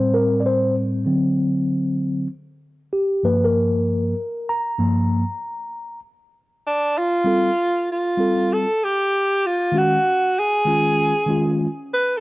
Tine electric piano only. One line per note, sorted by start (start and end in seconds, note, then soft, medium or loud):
0.00 1.03 A2 medium
0.00 1.03 G3 medium
0.00 1.04 C4 medium
0.00 0.16 C5 loud
0.14 0.41 A#4 medium
0.40 0.45 D5 medium
0.46 0.75 C5 medium
1.06 2.26 D3 medium
1.06 2.27 F#3 medium
1.06 2.27 C4 medium
2.93 3.25 G4 medium
3.23 4.12 G2 medium
3.23 4.13 F3 medium
3.23 4.13 A#3 medium
3.23 3.44 B4 medium
3.44 4.51 A#4 medium
4.49 5.99 A#5 loud
4.78 5.22 G2 medium
4.78 5.23 F3 medium
4.78 5.23 A#3 medium
7.24 7.49 G3 medium
7.24 7.49 C4 medium
7.24 7.50 F4 medium
7.24 7.50 A4 medium
8.17 8.64 G3 medium
8.17 8.65 C4 medium
8.17 8.65 F4 medium
8.17 8.66 A4 medium
9.72 9.97 D#3 medium
9.72 9.97 G#3 medium
9.72 9.98 C#4 medium
9.72 9.98 F#4 medium
10.65 11.12 D#3 medium
10.65 11.12 G#3 medium
10.65 11.13 C#4 medium
10.65 11.13 F4 medium
11.26 11.66 D#3 medium
11.26 11.66 G#3 medium
11.26 11.67 C#4 medium
11.26 11.67 F4 medium